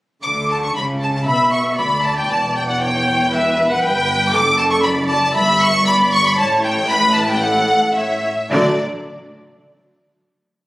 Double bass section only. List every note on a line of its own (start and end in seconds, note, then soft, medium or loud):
0.23 0.72 D2 soft
0.77 1.28 C#2 soft
1.27 1.79 B1 soft
1.78 2.30 D2 soft
2.30 3.80 E1 medium
3.82 4.32 G1 medium
4.32 5.35 F#1 medium
5.35 6.38 G1 medium
6.38 8.30 A1 medium
8.51 8.81 D2 medium